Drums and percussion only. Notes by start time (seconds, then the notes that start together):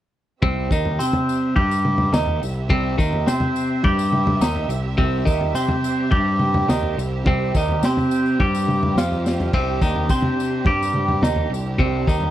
0.43 kick, floor tom
0.71 kick, tambourine
0.85 floor tom
1.00 tambourine
1.13 floor tom, mid tom
1.29 tambourine
1.56 kick, floor tom
1.71 tambourine
1.85 mid tom
1.98 floor tom, mid tom
2.13 snare, mid tom, tambourine
2.26 floor tom
2.43 tambourine
2.69 kick, floor tom
2.99 kick, tambourine
3.13 floor tom
3.27 snare, tambourine
3.40 floor tom, mid tom
3.56 tambourine
3.83 kick, floor tom
3.99 tambourine
4.12 mid tom
4.27 floor tom, mid tom
4.41 snare, tambourine
4.56 floor tom
4.70 tambourine
4.98 kick, floor tom
5.27 kick, tambourine
5.41 floor tom
5.55 tambourine
5.68 floor tom, mid tom
5.84 tambourine
6.11 kick, floor tom
6.39 mid tom
6.54 floor tom, mid tom
6.68 snare, mid tom, tambourine
6.83 floor tom
6.99 tambourine
7.25 kick, floor tom
7.55 kick, tambourine
7.69 floor tom
7.83 snare, tambourine
7.97 floor tom, mid tom, tambourine
8.11 tambourine
8.26 tambourine
8.40 kick, floor tom
8.55 tambourine
8.68 mid tom, tambourine
8.83 floor tom, mid tom
8.98 snare, tambourine
9.12 floor tom, tambourine
9.26 snare, tambourine
9.40 floor tom, tambourine
9.53 kick, floor tom, crash
9.82 kick, tambourine
9.96 floor tom
10.09 kick, tambourine
10.22 floor tom, mid tom
10.40 tambourine
10.65 kick, floor tom
10.83 tambourine
10.94 mid tom
11.08 floor tom, mid tom
11.22 snare, mid tom, tambourine
11.36 floor tom
11.54 tambourine
11.78 kick, floor tom
12.07 kick, tambourine
12.20 floor tom